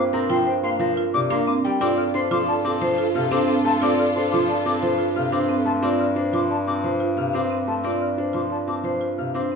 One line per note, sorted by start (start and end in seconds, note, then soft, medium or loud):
0.00 1.70 G2 medium
0.00 0.18 C5 medium
0.13 0.35 C4 medium
0.13 0.35 A#4 medium
0.13 0.19 A#5 loud
0.30 0.52 F3 loud
0.30 0.52 F4 medium
0.30 0.51 G5 loud
0.30 0.36 C6 medium
0.46 0.68 C5 medium
0.46 0.53 G5 medium
0.63 0.85 A#3 medium
0.63 0.86 F5 medium
0.63 0.69 C6 loud
0.79 1.02 F3 loud
0.79 1.02 A#4 medium
0.79 1.02 A#4 loud
0.97 1.19 F4 medium
1.13 1.36 C3 medium
1.13 1.36 D5 medium
1.13 1.20 D6 loud
1.30 1.52 A#3 loud
1.30 1.52 D4 medium
1.30 1.52 A#4 loud
1.30 1.36 C6 medium
1.47 1.69 C4 medium
1.47 1.53 D6 medium
1.64 1.86 G3 medium
1.64 1.70 G5 loud
1.64 1.86 G5 medium
1.80 9.55 G2 medium
1.80 2.02 C4 loud
1.80 2.02 F4 medium
1.80 5.62 F4 medium
1.80 5.62 A4 medium
1.80 1.93 A4 soft
1.80 2.03 D5 loud
1.80 1.87 D6 medium
1.97 2.09 A4 soft
1.97 2.19 D5 medium
1.97 2.04 F6 medium
2.14 2.36 D4 medium
2.14 2.26 A4 medium
2.14 2.36 C5 medium
2.14 2.20 C6 loud
2.31 2.53 F3 loud
2.31 2.53 F4 medium
2.31 2.43 A4 medium
2.31 2.53 C6 loud
2.31 2.37 D6 medium
2.48 2.60 A4 medium
2.48 2.70 D5 medium
2.48 2.54 A5 medium
2.64 2.86 C4 medium
2.64 2.77 A4 medium
2.64 2.87 A5 medium
2.64 2.70 D6 loud
2.81 3.03 F3 loud
2.81 2.94 A4 medium
2.81 3.03 C5 loud
2.81 3.03 C5 medium
2.98 3.20 F4 medium
2.98 3.10 A4 medium
3.15 3.37 C3 medium
3.15 3.27 A4 medium
3.15 3.37 F5 medium
3.15 3.21 F6 loud
3.31 3.53 C4 loud
3.31 3.53 D4 medium
3.31 3.43 A4 medium
3.31 3.53 C5 loud
3.31 3.38 D6 medium
3.47 3.70 C4 medium
3.47 3.59 A4 medium
3.65 3.87 A3 medium
3.65 3.77 A4 medium
3.65 3.71 A5 loud
3.65 3.87 C6 medium
3.81 4.04 C4 medium
3.81 4.03 F4 medium
3.81 3.94 A4 medium
3.81 4.04 D5 loud
3.81 3.88 D6 medium
3.98 4.10 A4 medium
3.98 4.20 D5 medium
3.98 4.05 F6 medium
4.14 4.37 D4 medium
4.14 4.26 A4 medium
4.14 4.37 C5 medium
4.14 4.21 C6 loud
4.31 4.54 F3 loud
4.31 4.54 F4 medium
4.31 4.44 A4 medium
4.31 4.54 C6 loud
4.31 4.38 D6 medium
4.48 4.60 A4 medium
4.48 4.70 D5 medium
4.48 4.55 A5 medium
4.65 4.87 C4 medium
4.65 4.77 A4 medium
4.65 4.87 A5 medium
4.65 4.71 D6 loud
4.81 5.04 F3 loud
4.81 4.93 A4 medium
4.81 5.04 C5 medium
4.81 5.04 C5 loud
4.99 5.21 F4 medium
4.99 5.10 A4 medium
5.16 5.38 C3 medium
5.16 5.28 A4 medium
5.16 5.38 F5 medium
5.16 5.22 F6 medium
5.32 5.54 C4 medium
5.32 5.54 D4 medium
5.32 5.45 A4 soft
5.32 5.55 C5 medium
5.32 5.38 D6 medium
5.49 5.71 C4 medium
5.49 5.62 A4 soft
5.65 5.88 A3 medium
5.65 5.72 A5 medium
5.65 5.88 C6 medium
5.82 6.04 C4 loud
5.82 6.05 F4 medium
5.82 6.05 D5 medium
5.82 5.89 D6 medium
6.00 6.21 D5 medium
6.00 6.06 F6 medium
6.16 6.38 D4 medium
6.16 6.38 C5 medium
6.33 6.55 F3 medium
6.33 6.55 F4 medium
6.33 6.55 C6 medium
6.33 6.40 D6 medium
6.50 6.72 D5 medium
6.50 6.56 A5 medium
6.67 6.89 C4 medium
6.67 6.89 A5 medium
6.67 6.73 D6 medium
6.83 7.05 F3 medium
6.83 7.05 C5 medium
6.83 7.06 C5 medium
7.00 7.22 F4 medium
7.17 7.39 C3 medium
7.17 7.39 F5 medium
7.17 7.23 F6 medium
7.33 7.56 C4 medium
7.33 7.55 D4 medium
7.33 7.56 C5 medium
7.33 7.40 D6 medium
7.50 7.72 C4 medium
7.67 7.89 A3 medium
7.67 7.74 A5 medium
7.67 7.89 C6 medium
7.84 8.06 C4 medium
7.84 8.06 F4 medium
7.84 8.06 D5 medium
7.84 7.90 D6 medium
8.00 8.22 D5 medium
8.00 8.07 F6 medium
8.18 8.39 D4 medium
8.18 8.40 C5 medium
8.33 8.56 F3 medium
8.33 8.56 F4 medium
8.33 8.56 C6 medium
8.33 8.41 D6 medium
8.50 8.73 D5 medium
8.50 8.57 A5 medium
8.67 8.89 C4 medium
8.67 8.89 A5 medium
8.67 8.74 D6 medium
8.84 9.06 F3 medium
8.84 9.06 C5 medium
9.01 9.23 F4 medium
9.18 9.40 C3 medium
9.18 9.40 F5 medium
9.18 9.24 F6 medium
9.34 9.55 C4 medium
9.34 9.55 D4 medium
9.34 9.55 C5 medium
9.34 9.41 D6 medium
9.52 9.55 C4 medium